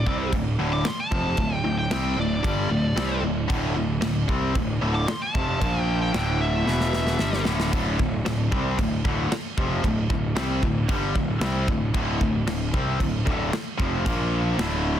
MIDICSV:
0, 0, Header, 1, 7, 480
1, 0, Start_track
1, 0, Key_signature, -1, "minor"
1, 0, Tempo, 527704
1, 1258, Time_signature, 4, 2, 24, 8
1, 13643, End_track
2, 0, Start_track
2, 0, Title_t, "Lead electric guitar"
2, 0, Program_c, 0, 29
2, 0, Note_on_c, 0, 74, 97
2, 271, Note_off_c, 0, 74, 0
2, 664, Note_on_c, 0, 86, 100
2, 777, Note_off_c, 0, 86, 0
2, 791, Note_on_c, 0, 84, 104
2, 901, Note_off_c, 0, 84, 0
2, 909, Note_on_c, 0, 81, 104
2, 1409, Note_off_c, 0, 81, 0
2, 1409, Note_on_c, 0, 79, 104
2, 1603, Note_off_c, 0, 79, 0
2, 1625, Note_on_c, 0, 79, 89
2, 1738, Note_off_c, 0, 79, 0
2, 1760, Note_on_c, 0, 79, 99
2, 1982, Note_off_c, 0, 79, 0
2, 1998, Note_on_c, 0, 74, 113
2, 2921, Note_off_c, 0, 74, 0
2, 4504, Note_on_c, 0, 86, 115
2, 4619, Note_off_c, 0, 86, 0
2, 4623, Note_on_c, 0, 84, 109
2, 4738, Note_off_c, 0, 84, 0
2, 4747, Note_on_c, 0, 81, 104
2, 5293, Note_off_c, 0, 81, 0
2, 5293, Note_on_c, 0, 79, 104
2, 5443, Note_off_c, 0, 79, 0
2, 5473, Note_on_c, 0, 79, 99
2, 5584, Note_off_c, 0, 79, 0
2, 5595, Note_on_c, 0, 79, 98
2, 5821, Note_off_c, 0, 79, 0
2, 5833, Note_on_c, 0, 76, 110
2, 6759, Note_off_c, 0, 76, 0
2, 13643, End_track
3, 0, Start_track
3, 0, Title_t, "Distorted electric guitar"
3, 0, Program_c, 1, 30
3, 58, Note_on_c, 1, 48, 79
3, 62, Note_on_c, 1, 55, 87
3, 66, Note_on_c, 1, 60, 96
3, 290, Note_off_c, 1, 48, 0
3, 292, Note_off_c, 1, 55, 0
3, 294, Note_off_c, 1, 60, 0
3, 306, Note_on_c, 1, 38, 57
3, 309, Note_on_c, 1, 45, 73
3, 493, Note_off_c, 1, 38, 0
3, 495, Note_off_c, 1, 45, 0
3, 536, Note_on_c, 1, 38, 90
3, 542, Note_on_c, 1, 50, 89
3, 543, Note_on_c, 1, 45, 101
3, 769, Note_off_c, 1, 38, 0
3, 773, Note_off_c, 1, 45, 0
3, 773, Note_off_c, 1, 50, 0
3, 1014, Note_on_c, 1, 41, 90
3, 1015, Note_on_c, 1, 48, 91
3, 1020, Note_on_c, 1, 53, 98
3, 1249, Note_off_c, 1, 41, 0
3, 1249, Note_off_c, 1, 48, 0
3, 1252, Note_off_c, 1, 53, 0
3, 1256, Note_on_c, 1, 38, 60
3, 1257, Note_on_c, 1, 45, 77
3, 1449, Note_off_c, 1, 38, 0
3, 1449, Note_off_c, 1, 45, 0
3, 1497, Note_on_c, 1, 38, 63
3, 1497, Note_on_c, 1, 45, 76
3, 1690, Note_off_c, 1, 38, 0
3, 1690, Note_off_c, 1, 45, 0
3, 1740, Note_on_c, 1, 48, 104
3, 1743, Note_on_c, 1, 55, 94
3, 1743, Note_on_c, 1, 60, 113
3, 1972, Note_off_c, 1, 48, 0
3, 1974, Note_off_c, 1, 55, 0
3, 1974, Note_off_c, 1, 60, 0
3, 1980, Note_on_c, 1, 45, 71
3, 1981, Note_on_c, 1, 38, 59
3, 2172, Note_off_c, 1, 38, 0
3, 2172, Note_off_c, 1, 45, 0
3, 2209, Note_on_c, 1, 43, 94
3, 2209, Note_on_c, 1, 50, 86
3, 2215, Note_on_c, 1, 55, 103
3, 2447, Note_off_c, 1, 43, 0
3, 2447, Note_off_c, 1, 50, 0
3, 2450, Note_off_c, 1, 55, 0
3, 2454, Note_on_c, 1, 38, 69
3, 2462, Note_on_c, 1, 45, 73
3, 2649, Note_off_c, 1, 38, 0
3, 2653, Note_off_c, 1, 45, 0
3, 2692, Note_on_c, 1, 48, 91
3, 2692, Note_on_c, 1, 55, 96
3, 2696, Note_on_c, 1, 60, 103
3, 2923, Note_off_c, 1, 48, 0
3, 2926, Note_off_c, 1, 55, 0
3, 2926, Note_on_c, 1, 38, 68
3, 2930, Note_on_c, 1, 45, 72
3, 2931, Note_off_c, 1, 60, 0
3, 3125, Note_off_c, 1, 38, 0
3, 3127, Note_off_c, 1, 45, 0
3, 3164, Note_on_c, 1, 38, 100
3, 3164, Note_on_c, 1, 45, 112
3, 3166, Note_on_c, 1, 50, 112
3, 3401, Note_off_c, 1, 38, 0
3, 3405, Note_off_c, 1, 45, 0
3, 3406, Note_off_c, 1, 50, 0
3, 3412, Note_on_c, 1, 38, 60
3, 3418, Note_on_c, 1, 45, 73
3, 3608, Note_off_c, 1, 38, 0
3, 3611, Note_off_c, 1, 45, 0
3, 3646, Note_on_c, 1, 38, 72
3, 3646, Note_on_c, 1, 45, 72
3, 3845, Note_off_c, 1, 38, 0
3, 3845, Note_off_c, 1, 45, 0
3, 3892, Note_on_c, 1, 48, 86
3, 3896, Note_on_c, 1, 55, 97
3, 3902, Note_on_c, 1, 60, 99
3, 4129, Note_off_c, 1, 48, 0
3, 4131, Note_off_c, 1, 55, 0
3, 4133, Note_on_c, 1, 38, 72
3, 4134, Note_off_c, 1, 60, 0
3, 4139, Note_on_c, 1, 45, 69
3, 4329, Note_off_c, 1, 38, 0
3, 4332, Note_off_c, 1, 45, 0
3, 4380, Note_on_c, 1, 38, 91
3, 4386, Note_on_c, 1, 45, 99
3, 4386, Note_on_c, 1, 50, 109
3, 4608, Note_off_c, 1, 38, 0
3, 4616, Note_off_c, 1, 45, 0
3, 4616, Note_off_c, 1, 50, 0
3, 4867, Note_on_c, 1, 41, 95
3, 4875, Note_on_c, 1, 48, 106
3, 4875, Note_on_c, 1, 53, 99
3, 5086, Note_off_c, 1, 41, 0
3, 5086, Note_off_c, 1, 53, 0
3, 5090, Note_on_c, 1, 46, 102
3, 5093, Note_off_c, 1, 48, 0
3, 5097, Note_on_c, 1, 53, 107
3, 5100, Note_on_c, 1, 58, 103
3, 5569, Note_off_c, 1, 46, 0
3, 5572, Note_off_c, 1, 53, 0
3, 5574, Note_off_c, 1, 58, 0
3, 5576, Note_on_c, 1, 38, 98
3, 5579, Note_on_c, 1, 45, 100
3, 5586, Note_on_c, 1, 50, 112
3, 6051, Note_off_c, 1, 38, 0
3, 6053, Note_off_c, 1, 45, 0
3, 6054, Note_on_c, 1, 40, 90
3, 6057, Note_off_c, 1, 50, 0
3, 6058, Note_on_c, 1, 47, 101
3, 6063, Note_on_c, 1, 52, 99
3, 6531, Note_off_c, 1, 40, 0
3, 6533, Note_off_c, 1, 47, 0
3, 6535, Note_off_c, 1, 52, 0
3, 6541, Note_on_c, 1, 43, 89
3, 6541, Note_on_c, 1, 50, 92
3, 6550, Note_on_c, 1, 55, 108
3, 6774, Note_off_c, 1, 43, 0
3, 6774, Note_off_c, 1, 50, 0
3, 6779, Note_off_c, 1, 55, 0
3, 6780, Note_on_c, 1, 38, 91
3, 6785, Note_on_c, 1, 45, 96
3, 6787, Note_on_c, 1, 50, 109
3, 7014, Note_off_c, 1, 38, 0
3, 7016, Note_off_c, 1, 45, 0
3, 7017, Note_off_c, 1, 50, 0
3, 7024, Note_on_c, 1, 38, 93
3, 7027, Note_on_c, 1, 45, 94
3, 7031, Note_on_c, 1, 50, 103
3, 7250, Note_off_c, 1, 38, 0
3, 7255, Note_off_c, 1, 45, 0
3, 7259, Note_off_c, 1, 50, 0
3, 7261, Note_on_c, 1, 38, 68
3, 7266, Note_on_c, 1, 45, 72
3, 7454, Note_off_c, 1, 38, 0
3, 7456, Note_off_c, 1, 45, 0
3, 7508, Note_on_c, 1, 38, 65
3, 7518, Note_on_c, 1, 45, 76
3, 7697, Note_off_c, 1, 38, 0
3, 7702, Note_off_c, 1, 45, 0
3, 7748, Note_on_c, 1, 48, 83
3, 7751, Note_on_c, 1, 55, 94
3, 7752, Note_on_c, 1, 60, 97
3, 7978, Note_off_c, 1, 48, 0
3, 7979, Note_off_c, 1, 55, 0
3, 7980, Note_off_c, 1, 60, 0
3, 8002, Note_on_c, 1, 38, 67
3, 8002, Note_on_c, 1, 45, 72
3, 8184, Note_off_c, 1, 38, 0
3, 8184, Note_off_c, 1, 45, 0
3, 8225, Note_on_c, 1, 38, 92
3, 8232, Note_on_c, 1, 45, 99
3, 8238, Note_on_c, 1, 50, 102
3, 8456, Note_off_c, 1, 38, 0
3, 8460, Note_off_c, 1, 45, 0
3, 8463, Note_off_c, 1, 50, 0
3, 8711, Note_on_c, 1, 41, 97
3, 8716, Note_on_c, 1, 48, 98
3, 8720, Note_on_c, 1, 53, 96
3, 8939, Note_off_c, 1, 41, 0
3, 8942, Note_off_c, 1, 48, 0
3, 8942, Note_on_c, 1, 38, 68
3, 8944, Note_off_c, 1, 53, 0
3, 8948, Note_on_c, 1, 45, 85
3, 9134, Note_off_c, 1, 38, 0
3, 9137, Note_off_c, 1, 45, 0
3, 9188, Note_on_c, 1, 38, 73
3, 9194, Note_on_c, 1, 45, 77
3, 9377, Note_off_c, 1, 38, 0
3, 9380, Note_off_c, 1, 45, 0
3, 9423, Note_on_c, 1, 48, 97
3, 9427, Note_on_c, 1, 55, 99
3, 9429, Note_on_c, 1, 60, 110
3, 9655, Note_off_c, 1, 48, 0
3, 9657, Note_off_c, 1, 55, 0
3, 9658, Note_off_c, 1, 60, 0
3, 9667, Note_on_c, 1, 38, 65
3, 9670, Note_on_c, 1, 45, 74
3, 9857, Note_off_c, 1, 38, 0
3, 9858, Note_off_c, 1, 45, 0
3, 9909, Note_on_c, 1, 50, 102
3, 9911, Note_on_c, 1, 43, 96
3, 9917, Note_on_c, 1, 55, 101
3, 10138, Note_off_c, 1, 50, 0
3, 10139, Note_off_c, 1, 43, 0
3, 10142, Note_off_c, 1, 55, 0
3, 10147, Note_on_c, 1, 45, 74
3, 10148, Note_on_c, 1, 38, 65
3, 10336, Note_off_c, 1, 45, 0
3, 10337, Note_off_c, 1, 38, 0
3, 10380, Note_on_c, 1, 48, 97
3, 10389, Note_on_c, 1, 55, 98
3, 10389, Note_on_c, 1, 60, 112
3, 10613, Note_off_c, 1, 48, 0
3, 10618, Note_off_c, 1, 55, 0
3, 10618, Note_off_c, 1, 60, 0
3, 10629, Note_on_c, 1, 38, 67
3, 10631, Note_on_c, 1, 45, 71
3, 10817, Note_off_c, 1, 38, 0
3, 10818, Note_off_c, 1, 45, 0
3, 10860, Note_on_c, 1, 38, 98
3, 10867, Note_on_c, 1, 45, 102
3, 10868, Note_on_c, 1, 50, 113
3, 11093, Note_off_c, 1, 38, 0
3, 11097, Note_off_c, 1, 45, 0
3, 11097, Note_off_c, 1, 50, 0
3, 11105, Note_on_c, 1, 38, 63
3, 11110, Note_on_c, 1, 45, 80
3, 11295, Note_off_c, 1, 38, 0
3, 11298, Note_off_c, 1, 45, 0
3, 11344, Note_on_c, 1, 38, 75
3, 11348, Note_on_c, 1, 45, 69
3, 11534, Note_off_c, 1, 38, 0
3, 11537, Note_off_c, 1, 45, 0
3, 11586, Note_on_c, 1, 48, 82
3, 11589, Note_on_c, 1, 55, 103
3, 11594, Note_on_c, 1, 60, 98
3, 11813, Note_off_c, 1, 48, 0
3, 11817, Note_on_c, 1, 38, 65
3, 11818, Note_off_c, 1, 55, 0
3, 11821, Note_off_c, 1, 60, 0
3, 11823, Note_on_c, 1, 45, 74
3, 12011, Note_off_c, 1, 38, 0
3, 12014, Note_off_c, 1, 45, 0
3, 12058, Note_on_c, 1, 38, 108
3, 12061, Note_on_c, 1, 45, 114
3, 12069, Note_on_c, 1, 50, 104
3, 12292, Note_off_c, 1, 38, 0
3, 12293, Note_off_c, 1, 45, 0
3, 12298, Note_off_c, 1, 50, 0
3, 12533, Note_on_c, 1, 48, 95
3, 12536, Note_on_c, 1, 41, 96
3, 12540, Note_on_c, 1, 53, 99
3, 12770, Note_off_c, 1, 48, 0
3, 12771, Note_off_c, 1, 41, 0
3, 12773, Note_off_c, 1, 53, 0
3, 12787, Note_on_c, 1, 46, 93
3, 12792, Note_on_c, 1, 53, 108
3, 12792, Note_on_c, 1, 58, 107
3, 13256, Note_off_c, 1, 46, 0
3, 13258, Note_off_c, 1, 53, 0
3, 13259, Note_off_c, 1, 58, 0
3, 13265, Note_on_c, 1, 38, 90
3, 13275, Note_on_c, 1, 45, 104
3, 13277, Note_on_c, 1, 50, 110
3, 13643, Note_off_c, 1, 38, 0
3, 13643, Note_off_c, 1, 45, 0
3, 13643, Note_off_c, 1, 50, 0
3, 13643, End_track
4, 0, Start_track
4, 0, Title_t, "Picked electric bass"
4, 0, Program_c, 2, 34
4, 59, Note_on_c, 2, 36, 92
4, 281, Note_off_c, 2, 36, 0
4, 295, Note_on_c, 2, 26, 93
4, 519, Note_off_c, 2, 26, 0
4, 535, Note_on_c, 2, 26, 86
4, 759, Note_off_c, 2, 26, 0
4, 1019, Note_on_c, 2, 29, 95
4, 1242, Note_off_c, 2, 29, 0
4, 1254, Note_on_c, 2, 26, 83
4, 1479, Note_off_c, 2, 26, 0
4, 1486, Note_on_c, 2, 26, 83
4, 1715, Note_off_c, 2, 26, 0
4, 1728, Note_on_c, 2, 36, 96
4, 1956, Note_off_c, 2, 36, 0
4, 1971, Note_on_c, 2, 26, 78
4, 2198, Note_off_c, 2, 26, 0
4, 2225, Note_on_c, 2, 31, 103
4, 2445, Note_off_c, 2, 31, 0
4, 2453, Note_on_c, 2, 26, 78
4, 2679, Note_off_c, 2, 26, 0
4, 2702, Note_on_c, 2, 36, 92
4, 2924, Note_off_c, 2, 36, 0
4, 2938, Note_on_c, 2, 26, 77
4, 3162, Note_off_c, 2, 26, 0
4, 3183, Note_on_c, 2, 26, 98
4, 3405, Note_off_c, 2, 26, 0
4, 3417, Note_on_c, 2, 26, 85
4, 3642, Note_off_c, 2, 26, 0
4, 3667, Note_on_c, 2, 26, 81
4, 3887, Note_off_c, 2, 26, 0
4, 3904, Note_on_c, 2, 36, 94
4, 4125, Note_off_c, 2, 36, 0
4, 4141, Note_on_c, 2, 26, 86
4, 4364, Note_off_c, 2, 26, 0
4, 4379, Note_on_c, 2, 26, 99
4, 4603, Note_off_c, 2, 26, 0
4, 4870, Note_on_c, 2, 29, 89
4, 5089, Note_off_c, 2, 29, 0
4, 5110, Note_on_c, 2, 34, 98
4, 5553, Note_off_c, 2, 34, 0
4, 5582, Note_on_c, 2, 26, 95
4, 6028, Note_off_c, 2, 26, 0
4, 6067, Note_on_c, 2, 28, 112
4, 6511, Note_off_c, 2, 28, 0
4, 6543, Note_on_c, 2, 31, 96
4, 6766, Note_off_c, 2, 31, 0
4, 6786, Note_on_c, 2, 26, 89
4, 7007, Note_off_c, 2, 26, 0
4, 7030, Note_on_c, 2, 26, 94
4, 7249, Note_off_c, 2, 26, 0
4, 7272, Note_on_c, 2, 26, 86
4, 7490, Note_off_c, 2, 26, 0
4, 7513, Note_on_c, 2, 26, 82
4, 7731, Note_off_c, 2, 26, 0
4, 7752, Note_on_c, 2, 36, 95
4, 7971, Note_off_c, 2, 36, 0
4, 7995, Note_on_c, 2, 26, 91
4, 8212, Note_off_c, 2, 26, 0
4, 8230, Note_on_c, 2, 26, 93
4, 8449, Note_off_c, 2, 26, 0
4, 8712, Note_on_c, 2, 29, 94
4, 8931, Note_off_c, 2, 29, 0
4, 8947, Note_on_c, 2, 26, 83
4, 9168, Note_off_c, 2, 26, 0
4, 9184, Note_on_c, 2, 26, 84
4, 9406, Note_off_c, 2, 26, 0
4, 9422, Note_on_c, 2, 36, 106
4, 9645, Note_off_c, 2, 36, 0
4, 9665, Note_on_c, 2, 26, 83
4, 9887, Note_off_c, 2, 26, 0
4, 9908, Note_on_c, 2, 31, 104
4, 10128, Note_off_c, 2, 31, 0
4, 10151, Note_on_c, 2, 26, 84
4, 10370, Note_off_c, 2, 26, 0
4, 10378, Note_on_c, 2, 36, 101
4, 10603, Note_off_c, 2, 36, 0
4, 10625, Note_on_c, 2, 26, 80
4, 10846, Note_off_c, 2, 26, 0
4, 10861, Note_on_c, 2, 26, 101
4, 11084, Note_off_c, 2, 26, 0
4, 11109, Note_on_c, 2, 26, 86
4, 11329, Note_off_c, 2, 26, 0
4, 11333, Note_on_c, 2, 26, 93
4, 11560, Note_off_c, 2, 26, 0
4, 11585, Note_on_c, 2, 36, 91
4, 11806, Note_off_c, 2, 36, 0
4, 11825, Note_on_c, 2, 26, 91
4, 12046, Note_off_c, 2, 26, 0
4, 12069, Note_on_c, 2, 26, 100
4, 12288, Note_off_c, 2, 26, 0
4, 12546, Note_on_c, 2, 29, 98
4, 12766, Note_off_c, 2, 29, 0
4, 12791, Note_on_c, 2, 34, 99
4, 13232, Note_off_c, 2, 34, 0
4, 13264, Note_on_c, 2, 26, 98
4, 13643, Note_off_c, 2, 26, 0
4, 13643, End_track
5, 0, Start_track
5, 0, Title_t, "Muted distorted electric guitar strokes"
5, 781, Note_on_c, 9, 29, 54
5, 872, Note_off_c, 9, 29, 0
5, 4619, Note_on_c, 9, 29, 53
5, 4710, Note_off_c, 9, 29, 0
5, 8469, Note_on_c, 9, 29, 55
5, 8560, Note_off_c, 9, 29, 0
5, 12302, Note_on_c, 9, 29, 61
5, 12393, Note_off_c, 9, 29, 0
5, 13643, End_track
6, 0, Start_track
6, 0, Title_t, "Muted picked electric bass strokes"
6, 774, Note_on_c, 9, 29, 40
6, 865, Note_off_c, 9, 29, 0
6, 4621, Note_on_c, 9, 29, 42
6, 4712, Note_off_c, 9, 29, 0
6, 8456, Note_on_c, 9, 29, 39
6, 8547, Note_off_c, 9, 29, 0
6, 12307, Note_on_c, 9, 29, 40
6, 12398, Note_off_c, 9, 29, 0
6, 13643, End_track
7, 0, Start_track
7, 0, Title_t, "Drums"
7, 59, Note_on_c, 9, 36, 92
7, 150, Note_off_c, 9, 36, 0
7, 296, Note_on_c, 9, 36, 86
7, 296, Note_on_c, 9, 49, 61
7, 387, Note_off_c, 9, 36, 0
7, 387, Note_off_c, 9, 49, 0
7, 772, Note_on_c, 9, 49, 57
7, 773, Note_on_c, 9, 38, 116
7, 863, Note_off_c, 9, 49, 0
7, 864, Note_off_c, 9, 38, 0
7, 1017, Note_on_c, 9, 36, 100
7, 1108, Note_off_c, 9, 36, 0
7, 1247, Note_on_c, 9, 49, 61
7, 1255, Note_on_c, 9, 36, 92
7, 1338, Note_off_c, 9, 49, 0
7, 1346, Note_off_c, 9, 36, 0
7, 1738, Note_on_c, 9, 38, 114
7, 1738, Note_on_c, 9, 49, 72
7, 1828, Note_off_c, 9, 49, 0
7, 1829, Note_off_c, 9, 38, 0
7, 2223, Note_on_c, 9, 36, 111
7, 2227, Note_on_c, 9, 49, 66
7, 2314, Note_off_c, 9, 36, 0
7, 2318, Note_off_c, 9, 49, 0
7, 2705, Note_on_c, 9, 49, 61
7, 2706, Note_on_c, 9, 38, 126
7, 2796, Note_off_c, 9, 49, 0
7, 2797, Note_off_c, 9, 38, 0
7, 3183, Note_on_c, 9, 36, 109
7, 3183, Note_on_c, 9, 49, 62
7, 3273, Note_off_c, 9, 49, 0
7, 3274, Note_off_c, 9, 36, 0
7, 3656, Note_on_c, 9, 49, 64
7, 3657, Note_on_c, 9, 38, 111
7, 3747, Note_off_c, 9, 49, 0
7, 3748, Note_off_c, 9, 38, 0
7, 3901, Note_on_c, 9, 36, 110
7, 3992, Note_off_c, 9, 36, 0
7, 4141, Note_on_c, 9, 49, 56
7, 4142, Note_on_c, 9, 36, 93
7, 4232, Note_off_c, 9, 49, 0
7, 4233, Note_off_c, 9, 36, 0
7, 4623, Note_on_c, 9, 49, 65
7, 4624, Note_on_c, 9, 38, 127
7, 4714, Note_off_c, 9, 49, 0
7, 4715, Note_off_c, 9, 38, 0
7, 4866, Note_on_c, 9, 36, 120
7, 4957, Note_off_c, 9, 36, 0
7, 5108, Note_on_c, 9, 36, 102
7, 5111, Note_on_c, 9, 49, 59
7, 5199, Note_off_c, 9, 36, 0
7, 5202, Note_off_c, 9, 49, 0
7, 5588, Note_on_c, 9, 49, 60
7, 5589, Note_on_c, 9, 38, 115
7, 5679, Note_off_c, 9, 49, 0
7, 5680, Note_off_c, 9, 38, 0
7, 6072, Note_on_c, 9, 38, 65
7, 6163, Note_off_c, 9, 38, 0
7, 6188, Note_on_c, 9, 38, 60
7, 6279, Note_off_c, 9, 38, 0
7, 6305, Note_on_c, 9, 38, 77
7, 6396, Note_off_c, 9, 38, 0
7, 6428, Note_on_c, 9, 38, 76
7, 6519, Note_off_c, 9, 38, 0
7, 6541, Note_on_c, 9, 38, 96
7, 6632, Note_off_c, 9, 38, 0
7, 6667, Note_on_c, 9, 38, 81
7, 6758, Note_off_c, 9, 38, 0
7, 6779, Note_on_c, 9, 38, 105
7, 6870, Note_off_c, 9, 38, 0
7, 6910, Note_on_c, 9, 38, 95
7, 7001, Note_off_c, 9, 38, 0
7, 7030, Note_on_c, 9, 49, 62
7, 7031, Note_on_c, 9, 36, 103
7, 7121, Note_off_c, 9, 49, 0
7, 7122, Note_off_c, 9, 36, 0
7, 7272, Note_on_c, 9, 36, 101
7, 7363, Note_off_c, 9, 36, 0
7, 7514, Note_on_c, 9, 49, 63
7, 7515, Note_on_c, 9, 38, 118
7, 7605, Note_off_c, 9, 49, 0
7, 7606, Note_off_c, 9, 38, 0
7, 7751, Note_on_c, 9, 36, 109
7, 7842, Note_off_c, 9, 36, 0
7, 7993, Note_on_c, 9, 36, 100
7, 7996, Note_on_c, 9, 49, 64
7, 8084, Note_off_c, 9, 36, 0
7, 8087, Note_off_c, 9, 49, 0
7, 8232, Note_on_c, 9, 36, 107
7, 8323, Note_off_c, 9, 36, 0
7, 8476, Note_on_c, 9, 49, 66
7, 8477, Note_on_c, 9, 38, 119
7, 8567, Note_off_c, 9, 49, 0
7, 8568, Note_off_c, 9, 38, 0
7, 8711, Note_on_c, 9, 36, 113
7, 8802, Note_off_c, 9, 36, 0
7, 8950, Note_on_c, 9, 36, 85
7, 8955, Note_on_c, 9, 49, 62
7, 9041, Note_off_c, 9, 36, 0
7, 9046, Note_off_c, 9, 49, 0
7, 9188, Note_on_c, 9, 36, 105
7, 9279, Note_off_c, 9, 36, 0
7, 9428, Note_on_c, 9, 49, 63
7, 9429, Note_on_c, 9, 38, 114
7, 9519, Note_off_c, 9, 49, 0
7, 9520, Note_off_c, 9, 38, 0
7, 9667, Note_on_c, 9, 36, 85
7, 9758, Note_off_c, 9, 36, 0
7, 9905, Note_on_c, 9, 49, 69
7, 9907, Note_on_c, 9, 36, 119
7, 9996, Note_off_c, 9, 49, 0
7, 9998, Note_off_c, 9, 36, 0
7, 10147, Note_on_c, 9, 36, 96
7, 10238, Note_off_c, 9, 36, 0
7, 10382, Note_on_c, 9, 49, 66
7, 10383, Note_on_c, 9, 38, 119
7, 10473, Note_off_c, 9, 49, 0
7, 10474, Note_off_c, 9, 38, 0
7, 10626, Note_on_c, 9, 36, 102
7, 10716, Note_off_c, 9, 36, 0
7, 10865, Note_on_c, 9, 36, 105
7, 10865, Note_on_c, 9, 49, 70
7, 10956, Note_off_c, 9, 36, 0
7, 10956, Note_off_c, 9, 49, 0
7, 11106, Note_on_c, 9, 36, 98
7, 11197, Note_off_c, 9, 36, 0
7, 11347, Note_on_c, 9, 49, 70
7, 11348, Note_on_c, 9, 38, 111
7, 11438, Note_off_c, 9, 49, 0
7, 11439, Note_off_c, 9, 38, 0
7, 11587, Note_on_c, 9, 36, 102
7, 11678, Note_off_c, 9, 36, 0
7, 11827, Note_on_c, 9, 36, 97
7, 11830, Note_on_c, 9, 49, 61
7, 11918, Note_off_c, 9, 36, 0
7, 11921, Note_off_c, 9, 49, 0
7, 12070, Note_on_c, 9, 36, 115
7, 12161, Note_off_c, 9, 36, 0
7, 12309, Note_on_c, 9, 49, 63
7, 12310, Note_on_c, 9, 38, 120
7, 12400, Note_off_c, 9, 49, 0
7, 12401, Note_off_c, 9, 38, 0
7, 12549, Note_on_c, 9, 36, 113
7, 12640, Note_off_c, 9, 36, 0
7, 12790, Note_on_c, 9, 36, 105
7, 12797, Note_on_c, 9, 49, 61
7, 12881, Note_off_c, 9, 36, 0
7, 12888, Note_off_c, 9, 49, 0
7, 13273, Note_on_c, 9, 49, 66
7, 13274, Note_on_c, 9, 38, 127
7, 13364, Note_off_c, 9, 38, 0
7, 13364, Note_off_c, 9, 49, 0
7, 13643, End_track
0, 0, End_of_file